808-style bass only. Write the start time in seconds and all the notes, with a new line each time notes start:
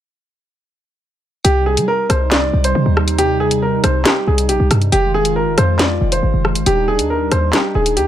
1.45 C2
1.77 G3
2.10 C2
2.53 C2
2.75 C3
2.86 D#2
3.84 C2
4.27 C2
4.49 A#1
4.60 C2
4.71 G2
4.92 F1
5.36 G1
5.47 F1
5.58 F2
6.01 F1
6.23 G#1
6.34 F1
6.55 G1
6.66 D#1
6.99 D#2
7.32 D#2
7.75 D#1
7.97 D#2